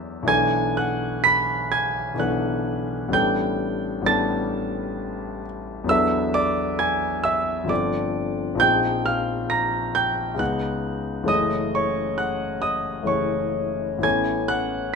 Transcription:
grand piano
Already playing: E2 F#3 B3 D4 A4 E5 E6
0.23 B1 E3 B3 D4
0.28 A4 G#5 G#6
0.77 F#5 F#6
1.24 B5 B6
1.72 G#5 G#6
2.14 B1 E3 B3
2.19 D4 A4 F#5 F#6
3.08 A1 G3 B3
3.12 D4 A4 G5 G6
4.02 A1 G3 B3 D4
4.06 A4 A5 A6
5.84 E2 F#3 B3
5.89 D4 A4 E5 E6
6.34 D5 D6
6.79 G#5 G#6
7.24 E5 E6
7.64 G1 F3 C4
7.68 D4 A4 D5 D6
8.55 A#1 F3 C4 D#4
8.60 G#4 G5 G6
9.06 F5 F6
9.50 A#5 A#6
9.95 G5 G6
10.34 C#2 C#3 B3 D#4
10.39 G#4 F#5 F#6
11.23 F#1 E3 A3 C#4
11.28 G#4 D#5 D#6
11.75 C#5 C#6
12.18 F#5 F#6
12.62 D#5 D#6
13.02 F#1 E3 A3 C#4
13.07 G#4 C#5 C#6
13.98 A1 E3 B3
14.03 C#4 A4 G#5 G#6
14.48 F#5 F#6

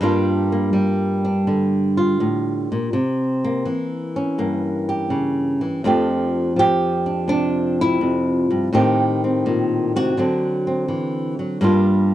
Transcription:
nylon-string guitar
0.01 G2 G3 A#3 D4 F4
0.52 A#3
0.73 G3
1.25 D4
1.47 D3
1.97 F4
2.20 A2
2.72 A#2
2.93 C3
3.44 A#3
3.65 E3
4.16 C#4
4.38 G2 A#3
4.89 G4
5.10 C#3
5.61 E3
5.84 F2 F3 A3 D4 G4
6.56 F3 G4
7.06 D4
7.28 C3 D4
7.81 E4
8.01 F2
8.51 G2
8.73 A2 D#3 C4 D#4 G4
9.24 C4
9.46 A#2
9.96 C3 F#4
10.17 D3 F#3 C4 D4
10.67 C4
10.88 E3
11.39 F#3
11.61 G2 G3 A#3 D4 F4

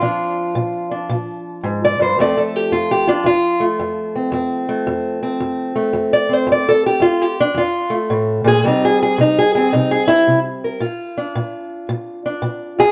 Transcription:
steel-string acoustic guitar
Already playing: F4
0.01 A#2 F3 D4
0.55 A#2
0.91 D4
1.09 A#2
1.63 G#2
1.84 D5
1.99 G2 C5
2.19 F2 F3 A3 C4 D5
2.37 A4
2.56 G4
2.72 F2 F4
2.91 G4
3.08 D4 F4
3.24 F2 F4
3.60 A3
3.80 F2
4.16 C4
4.32 F2 C4
4.68 A3
4.87 F2
5.22 C4
5.40 F2
5.75 A3
5.93 F2
6.13 D5
6.29 C4 C5
6.47 F2
6.52 D5
6.68 A4
6.86 G4
7.00 F2 F4
7.21 G4
7.40 D4
7.54 F2 F4
7.90 A3
8.10 A2
8.44 A#2 G#4
8.64 C3 G3 C4 D#4
8.85 G#4
9.03 G#4
9.18 C3 D#4
9.38 G#4
9.55 C4 G#4
9.73 C3 D#4
9.91 G#4
10.08 E4
10.28 C3
10.65 A#4
10.81 A#2 F4
11.18 D4
11.36 A#2
11.88 A#2
12.25 D4
12.42 A#2
12.78 F4 G#4

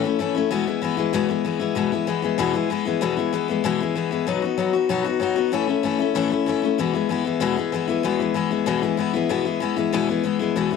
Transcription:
steel-string acoustic guitar
0.04 A3 C#4 E4
0.19 E3 A3 C#4 E4
0.35 A3 C#4 E4
0.51 E2 B2 E3 G#3 B3 E4
0.66 E3 G#3 B3 E4
0.82 E3 G#3 B3 E4
0.97 E3 G#3 B3 E4
1.13 E2 B2 E3 G#3 B3 E4
1.29 E3 G#3 B3 E4
1.45 E3 G#3 B3 E4
1.59 E3 G#3 B3 E4
1.75 E2 B2 E3 G#3 B3 E4
1.92 E3 G#3 B3 E4
2.07 E3 G#3 B3 E4
2.22 E3 G#3 B3 E4
2.38 E2 B2 E3 G#3 B3 E4
2.53 E3 G#3 B3 E4
2.70 E3 G#3 B3 E4
2.85 E3 G#3 B3 E4
3.01 E2 B2 E3 G#3 B3 E4
3.17 E3 G#3 B3 E4
3.33 E3 G#3 B3 E4
3.48 E3 G#3 B3 E4
3.64 E2 B2 E3 G#3 B3 E4
3.80 E3 G#3 B3 E4
3.95 E3 G#3 B3 E4
4.11 E3 G#3 B3 E4
4.27 B2 F#3 B3 D#4 F#4
4.42 B3 D#4 F#4
4.58 F#3 B3 D#4 F#4
4.73 B3 D#4 F#4
4.89 B2 F#3 B3 D#4 F#4
5.04 B3 D#4 F#4
5.20 F#3 B3 D#4 F#4
5.36 B3 D#4 F#4
5.52 A2 E3 A3 C#4 E4
5.67 A3 C#4 E4
5.83 E3 A3 C#4 E4
5.99 A3 C#4 E4
6.15 A2 E3 A3 C#4 E4
6.30 A3 C#4 E4
6.46 E3 A3 C#4 E4
6.62 A3 C#4 E4
6.78 E2 B2 E3 G#3 B3 E4
6.93 E3 G#3 B3 E4
7.09 E3 G#3 B3 E4
7.25 E3 G#3 B3 E4
7.40 E2 B2 E3 G#3 B3 E4
7.56 E3 G#3 B3 E4
7.72 E3 G#3 B3 E4
7.88 E3 G#3 B3 E4
8.03 E2 B2 E3 G#3 B3 E4
8.19 E3 G#3 B3 E4
8.34 E3 G#3 B3 E4
8.51 E3 G#3 B3 E4
8.66 E2 B2 E3 G#3 B3 E4
8.82 E3 G#3 B3 E4
8.97 E3 G#3 B3 E4
9.14 E3 G#3 B3 E4
9.29 E2 B2 E3 G#3 B3 E4
9.45 E3 G#3 B3 E4
9.60 E3 G#3 B3 E4
9.76 E3 G#3 B3 E4
9.93 E2 B2 E3 G#3 B3 E4
10.08 E3 G#3 B3 E4
10.24 E3 G#3 B3 E4
10.39 E3 G#3 B3 E4
10.56 E2 B2 E3 G#3 B3 E4
10.71 E3 G#3 B3 E4

